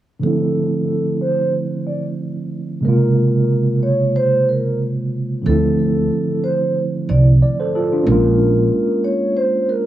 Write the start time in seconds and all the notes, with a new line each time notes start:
0.19 D3 F3 A3
0.23 C4 E4 A4
1.21 C5
1.87 D5
2.81 C#3 G#3 A#3
2.85 C3 F4 A#4
3.83 C#5
4.16 C5
4.49 A#4
5.42 D2 D3 F3 A3
5.46 C4 E4 A4
6.44 C5
7.09 C2 D5
7.42 D5
7.60 A4 C5
7.75 F4 A4
7.93 D4 F4
8.04 A#1 G#3 A#3 C#4 A#4
8.12 F4
9.04 C#5
9.37 C5
9.69 A#4